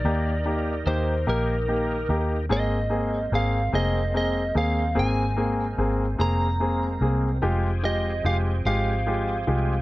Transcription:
X:1
M:6/8
L:1/8
Q:3/8=49
K:Ablyd
V:1 name="Lead electric guitar"
d2 c B2 z | e2 f e e f | a3 b2 z | z e f f3 |]
V:2 name="Grand piano"
[B,EG] [B,EG] [B,EG] [B,EG] [B,EG] [B,EG] | [B,CA] [B,CA] [B,CA] [B,CA] [B,CA] [B,CA] | [B,CA] [B,CA] [B,CA] [B,CA] [B,CA] [B,CA] | [A,FG] [A,FG] [A,FG] [A,FG] [A,FG] [A,FG] |]
V:3 name="Tonewheel organ"
[E,EGB]6 | [A,B,C]6- | [A,B,C]6 | [F,GA]6 |]
V:4 name="Fingered electric bass" clef=bass
E,,2 E,, B,,,2 E,, | A,,,2 A,,, F,,,2 E,, | A,,,2 A,,, F,,,2 C,, | F,,,2 F,,, A,,,2 C,, |]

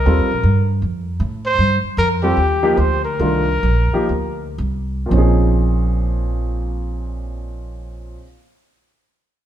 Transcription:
X:1
M:4/4
L:1/8
Q:"Swing" 1/4=127
K:Bbdor
V:1 name="Trumpet"
B3 z4 c- | c z B G3 c B- | B6 z2 | z8 |
z8 |]
V:2 name="Grand piano"
[G,CF=A] z6 z | z3 [G,CF=A] z [F,B,EG] z2 | [E,=A,=DF] z2 [F,B,EG] z4 | [B,,F,CDEA]8- |
[B,,F,CDEA]8 |]
V:3 name="Upright bass" clef=bass
(3E,, C,, B,,, G,,2 F,,2 =A,,2 | G,, z F,,2 E,,2 =D,,2 | C,,2 B,,, z =D,,2 C,,2 | B,,,8- |
B,,,8 |]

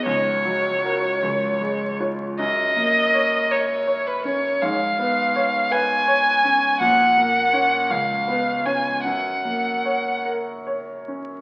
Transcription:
X:1
M:6/8
L:1/16
Q:3/8=53
K:F#
V:1 name="Violin"
c8- c2 z2 | d6 c3 B c2 | e6 g6 | f6 e4 g2 |
f6 z6 |]
V:2 name="Grand piano"
C,,2 F,2 [FA]2 C,,2 G,2 [Ec]2 | F,,2 A,2 c2 A2 c2 C2 | G,,2 B,2 c2 B2 c2 C2 | A,,2 A,2 [Cc]2 C,,2 B,2 [Cc]2 |
F,,2 A,2 c2 A2 c2 C2 |]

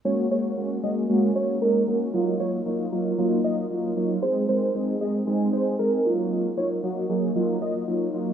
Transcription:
X:1
M:4/4
L:1/16
Q:1/4=115
K:Ebdor
V:1 name="Digital synth lead"
d2 d3 z e z3 d2 B3 z | z2 d z6 z e2 z4 | c2 c3 z e z3 c2 B3 z | z2 d z6 z e2 z4 |]
V:2 name="Analog polysynth"
[A,B,DG]2 [A,B,DG]2 [A,B,DG]2 [A,B,DG]2 [A,B,DG]2 [A,B,DG]2 [A,B,DE]2 [A,B,DG]2 | [G,B,EF]2 [G,B,EF]2 [G,B,EF]2 [G,B,EF]2 [G,B,EF]2 [G,B,EF]2 [G,B,EF]2 [G,B,EF]2 | [A,CEA]2 [A,CEB]2 [A,CEA]2 [A,CEA]2 [A,CEA]2 [A,CEA]2 [A,CEA]2 [G,B,EF]2- | [G,B,EF]2 [G,B,EF]2 [G,B,EG]2 [G,B,EA]2 [G,B,EF]2 [G,B,EF]2 [G,B,EF]2 [G,B,EF]2 |]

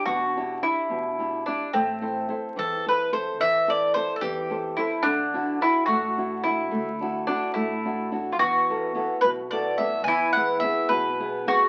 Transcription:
X:1
M:6/8
L:1/16
Q:3/8=72
K:Em
V:1 name="Mandolin"
z12 | [K:Ador] z6 A2 B2 c2 | e2 d2 c3/2 A/2 G4- G/2 z3/2 | z12 |
z12 | z6 B2 d2 e2 | ^g2 f2 e2 B4- B/2 z3/2 |]
V:2 name="Mandolin"
F4 E6 D2 | [K:Ador] C12- | C8- C2 E2 | D4 E2 F4 E2- |
E4 D2 E4 z3/2 =F/2 | F12 | E8- E2 F2 |]
V:3 name="Nylon-string guitar"
[B,,DEG]2 [DEG]2 [DEG]2 B,,2 [DEG]2 [DEG]2 | [K:Ador] A,2 [EAc]2 [EAc]2 E,2 [EAc]2 [EAc]2 | E,2 [EAc]2 [EAc]2 E,2 [EAc]2 [EAc]2 | D,2 [DEF]2 [DEF]2 A,2 [DEF]2 [DEF]2 |
A,2 [DEF]2 [DEF]2 A,2 [DEF]2 [DEF]2 | E,2 [B,EA]2 [B,EA]2 B,,2 [B,EA]2 [B,EA]2 | E,2 [B,E^G]2 [B,EG]2 B,,2 [B,EG]2 [B,EG]2 |]
V:4 name="Upright bass" clef=bass
E,,6 E,,6 | [K:Ador] A,,,6 E,,6 | A,,,6 E,,6 | D,,6 A,,,6 |
D,,6 A,,,6 | E,,6 B,,,6 | E,,6 B,,,6 |]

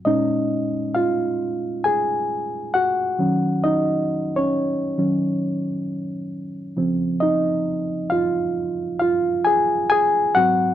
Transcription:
X:1
M:4/4
L:1/16
Q:"Swing 16ths" 1/4=67
K:Bbm
V:1 name="Reed electric piano"
[Ee]4 [Ff]4 [Aa]4 [Gg]4 | [Ee]3 [Dd]6 z6 z | [Ee]4 [Ff]4 [Ff]2 [Aa]2 [Aa]2 [Gg]2 |]
V:2 name="Reed electric piano" clef=bass
[B,,A,D]2 z12 [E,G,D]2 | z6 [E,G,D]2 z6 [D,F,C]2- | [D,F,C]12- [D,F,C]2 [A,,G,C]2 |]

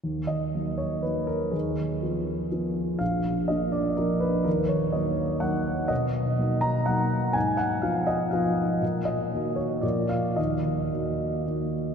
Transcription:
X:1
M:3/4
L:1/8
Q:1/4=122
K:Ebm
V:1 name="Grand piano"
z e2 d c B | A6 | f2 e =d B c | B d e2 g2 |
^d3 ^a ^f2 | a g f e f2 | z e2 d =d f | e4- e z |]
V:2 name="Grand piano"
E,,2 [G,B,E]2 [G,B,E]2 | E,,2 [F,CF]2 [F,CF]2 | B,,,2 [F,B,=D]2 [F,B,D]2 | E,,2 [G,B,E]2 [G,B,E]2 |
=B,,2 [^F,^A,^D]2 [F,A,D]2 | A,,2 [F,CF]2 [F,CF]2 | B,,2 [E,B,G]2 [B,,F,B,F]2 | E,,2 [E,B,G]2 [E,B,G]2 |]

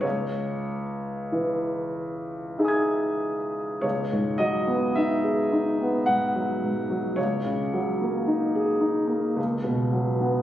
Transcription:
X:1
M:3/4
L:1/16
Q:1/4=54
K:C#m
V:1 name="Grand piano"
c8 [egd'g']4 | c2 d2 e4 f4 | c12 |]
V:2 name="Grand piano" clef=bass
C,,4 E,4 [DG]4 | C,, G,, F, B, D G D B, G,, F, G,, F, | C,, C, F, ^A, D G D A, C,, B,, F, B, |]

